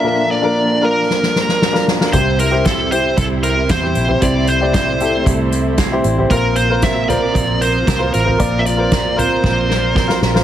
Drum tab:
HH |----------------|x-x-x-x-x-x-x-x-|x-x-x-x-x-x-x-x-|x-x-x-x-x-x-x-x-|
SD |--------oooooooo|----o-------o---|----o-------o---|----o-------o---|
FT |----------------|---------------o|---------------o|------o--------o|
BD |----------------|o---o---o---o---|o---o---o---o---|o---o---o---o---|

HH |x-x-x-x---------|
SD |----o---o-o-oooo|
FT |------o---------|
BD |o---o---o---o---|